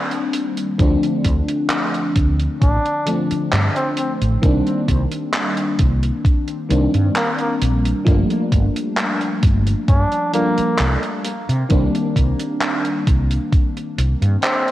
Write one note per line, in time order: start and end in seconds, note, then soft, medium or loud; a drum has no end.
0.00 0.74 D#3 medium
0.00 0.74 G3 medium
0.00 0.75 A#3 medium
0.00 0.75 C4 medium
0.00 0.75 D4 medium
0.11 closed hi-hat soft
0.34 closed hi-hat loud
0.57 closed hi-hat medium
0.78 0.95 D2 medium
0.78 3.01 D3 medium
0.78 3.01 F3 medium
0.78 3.02 A3 medium
0.78 3.02 C4 medium
0.78 3.03 D4 medium
0.78 kick loud
0.78 closed hi-hat medium
1.03 closed hi-hat soft
1.25 1.40 D2 loud
1.25 kick medium
1.25 closed hi-hat loud
1.49 closed hi-hat medium
1.70 clap loud
1.70 closed hi-hat medium
1.94 closed hi-hat soft
2.16 2.46 D2 medium
2.16 kick loud
2.16 closed hi-hat medium
2.39 closed hi-hat medium
2.61 2.76 A1 medium
2.61 3.16 D4 medium
2.61 kick loud
2.61 closed hi-hat medium
2.85 closed hi-hat soft
3.05 4.37 D3 medium
3.05 4.38 F3 medium
3.05 4.38 A3 medium
3.05 4.38 C4 medium
3.05 4.39 D4 medium
3.05 closed hi-hat loud
3.31 muted fretless electric bass stroke soft
3.31 closed hi-hat medium
3.52 3.67 G2 medium
3.52 clap loud
3.52 closed hi-hat medium
3.76 3.90 C4 medium
3.76 closed hi-hat soft
3.97 4.13 C4 medium
3.97 closed hi-hat loud
4.21 4.35 A1 medium
4.21 closed hi-hat medium
4.42 4.58 C2 loud
4.42 6.64 D#3 medium
4.42 6.65 G3 medium
4.42 6.65 A#3 medium
4.42 6.66 C4 medium
4.42 6.66 D4 medium
4.42 kick loud
4.42 closed hi-hat medium
4.67 closed hi-hat soft
4.88 5.04 C2 loud
4.88 kick medium
4.88 closed hi-hat loud
5.12 closed hi-hat medium
5.34 clap loud
5.34 closed hi-hat medium
5.57 closed hi-hat soft
5.79 6.09 C2 medium
5.79 kick loud
5.79 closed hi-hat loud
6.03 closed hi-hat medium
6.25 kick loud
6.25 closed hi-hat medium
6.48 closed hi-hat soft
6.69 6.85 C2 medium
6.69 8.01 D#3 medium
6.69 8.01 G3 medium
6.69 8.01 A#3 medium
6.69 8.02 C4 medium
6.69 8.02 D4 medium
6.69 closed hi-hat medium
6.94 7.08 G2 medium
6.94 closed hi-hat medium
7.16 7.31 A#3 medium
7.16 clap loud
7.16 closed hi-hat medium
7.39 7.54 A#3 medium
7.39 closed hi-hat soft
7.62 7.91 A#1 medium
7.62 closed hi-hat loud
7.85 closed hi-hat medium
8.05 8.22 G1 loud
8.05 10.28 F3 medium
8.05 10.28 G3 medium
8.05 10.29 A3 medium
8.05 10.29 A#3 medium
8.05 10.29 D4 loud
8.05 kick loud
8.05 closed hi-hat medium
8.30 closed hi-hat soft
8.52 8.67 G1 loud
8.52 kick medium
8.52 closed hi-hat medium
8.76 closed hi-hat medium
8.98 clap loud
8.98 closed hi-hat medium
9.21 closed hi-hat soft
9.43 9.73 G1 medium
9.43 kick loud
9.43 closed hi-hat loud
9.67 closed hi-hat medium
9.88 10.04 G2 medium
9.88 10.34 D4 medium
9.88 kick loud
9.88 closed hi-hat medium
10.12 closed hi-hat soft
10.33 11.22 F3 medium
10.33 11.22 G3 medium
10.33 11.22 A#3 medium
10.33 10.89 A#3 medium
10.33 11.23 D4 medium
10.33 11.22 A4 medium
10.33 closed hi-hat medium
10.58 muted fretless electric bass stroke soft
10.58 closed hi-hat medium
10.79 10.95 C2 medium
10.79 clap loud
10.79 closed hi-hat medium
11.03 closed hi-hat soft
11.24 closed hi-hat loud
11.49 11.63 C3 medium
11.49 closed hi-hat medium
11.69 11.86 C2 loud
11.69 13.92 D#3 medium
11.69 13.92 G3 medium
11.69 13.93 A#3 medium
11.69 13.93 C4 medium
11.69 13.93 D4 loud
11.69 kick loud
11.69 closed hi-hat medium
11.95 closed hi-hat soft
12.16 12.31 C2 loud
12.16 kick medium
12.16 closed hi-hat medium
12.39 closed hi-hat medium
12.61 clap loud
12.61 closed hi-hat medium
12.85 closed hi-hat soft
13.07 13.37 C2 medium
13.07 kick loud
13.07 closed hi-hat medium
13.31 closed hi-hat medium
13.52 kick loud
13.52 closed hi-hat medium
13.77 closed hi-hat soft
13.98 14.13 C2 medium
13.98 closed hi-hat loud
14.21 14.35 G2 medium
14.21 closed hi-hat medium
14.42 14.71 C4 medium
14.42 clap loud
14.42 closed hi-hat medium
14.68 closed hi-hat soft